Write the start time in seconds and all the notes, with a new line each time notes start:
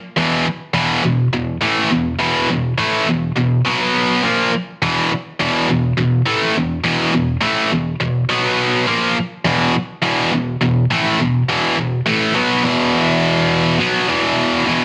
0.16 E2 B2 E3
0.46 muted distorted electric guitar stroke
0.74 E2 B2 E3
1.03 E2 B2
1.33 E2 B2
1.62 A2 E3 A3
1.91 E2 B2
2.19 E2 B2 E3
2.50 E2 B2
2.78 A2 E3 A3
3.07 E2 B2
3.36 E2 B2
3.65 B2 F#3 B3
4.23 A#2 F3 A#3
4.53 muted distorted electric guitar stroke
4.82 E2 B2 E3
5.11 muted distorted electric guitar stroke
5.40 E2 B2 E3
5.69 E2 B2
5.97 E2 B2
6.26 A2 E3 A3
6.55 E2 B2
6.84 E2 B2 E3
7.13 E2 B2
7.41 A2 E3 A3
7.70 E2 B2
8.00 E2 B2
8.29 B2 F#3 B3
8.87 A#2 F3 A#3
9.16 muted distorted electric guitar stroke
9.45 E2 B2 E3
9.74 muted distorted electric guitar stroke
10.03 E2 B2 E3
10.32 E2 B2
10.61 E2 B2
10.91 A2 E3 A3
11.19 E2 B2
11.49 E2 B2 E3
11.76 E2 B2
12.06 A2 E3 A3
12.34 B2 F#3 B3
12.63 E2 B2 E3
13.79 B2 F#3 B3
14.08 E2 B2 E3
14.66 E2 B2 E3